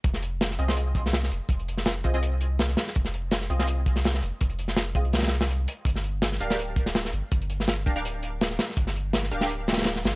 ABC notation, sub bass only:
X:1
M:4/4
L:1/8
Q:"Swing 16ths" 1/4=165
K:Fdor
V:1 name="Sub bass" clef=bass
F,,,3 C,,4 F,,, | F,,,3 C,,4 z | F,,,3 C,,4 F,,, | F,,,3 C,,4 z |
G,,,3 D,,,4 G,,, | G,,,3 D,,,4 z | G,,,3 D,,,4 G,,, |]